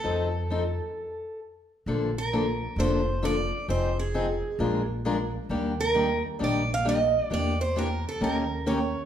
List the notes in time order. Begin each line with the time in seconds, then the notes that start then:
Already playing: A4
0.04 F2 F3 C4 D#4 A4
0.50 F3 C4 D#4 A4
1.86 A#1 D3 F3 A#3 D4 A4
2.18 A#4
2.33 D3 F3 A#3 D4 A4
2.76 F1 D3 F3 A#3 D4 A4 C5
3.23 D3 F3 A#3 D4 A4 D5
3.68 F1 F3 C4 D#4 G#4 C5
3.99 G#4
4.14 F3 C4 D#4 G#4
4.59 A#1 F3 G#3 D4 F4 A#4
5.05 F3 G#3 D4 F4 A#4
5.49 D#2 D#3 G3 A#3 D4 G4
5.81 A#4
5.95 D#3 G3 A#3 D4 G4
6.39 A#1 D#3 G3 A#3 D4 G4
6.44 D5
6.74 F5
6.85 D#3 G3 A#3 D4 G4 D#5
7.30 E2 E3 A#3 D4 G4 D5
7.61 C5
7.76 E3 A#3 D4 G4 A#4
8.09 A4
8.21 D#2 D#3 A#3 C#4 G4 A#4
8.66 D#3 A#3 C#4 G4 A#4 C#5